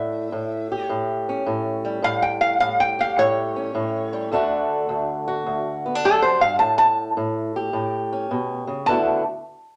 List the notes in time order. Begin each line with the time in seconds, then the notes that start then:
Already playing: A2 E5
0.32 A2
0.72 G4
0.89 A2
1.29 C#4
1.46 A2
1.85 G3
2.02 A2 F5
2.22 G5
2.41 F5
2.60 A2 F5
2.80 G5
2.99 G4 F5
3.17 A2 C#5
3.56 C#4
3.75 A2
4.13 G3
4.31 D2 D3 A3 D4 F#4
4.89 D2
5.28 F#4
5.46 D2
5.86 B3
5.95 D4
6.04 F#2 A4
6.22 C5
6.41 G2 F5
6.59 A2 A5
6.78 A5
7.17 A2
7.56 G4
7.73 A2
8.12 C#4
8.31 B2
8.67 C#3
8.86 D2 D3 B3 E4 A5
8.91 F#4